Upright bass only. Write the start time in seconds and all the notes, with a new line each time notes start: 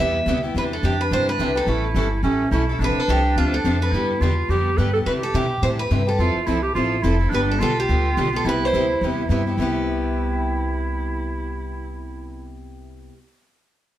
0.00 E2
0.26 D2
0.54 E2
0.83 F2
1.11 G2
1.39 C2
1.67 A1
1.95 G1
2.23 A1
2.51 B1
2.79 A1
2.96 muted upright bass stroke
3.08 C2
3.36 D2
3.64 F2
3.92 G2
4.21 E2
4.49 F2
4.78 G2
5.06 C3
5.34 B2
5.62 A2
5.91 G2
6.19 F2
6.36 muted upright bass stroke
6.47 C2
6.75 A1
7.03 F1
7.31 G1
7.61 B1
7.89 D2
8.17 B1
8.45 C2
8.73 D2
9.01 E2
9.29 G2
9.57 C2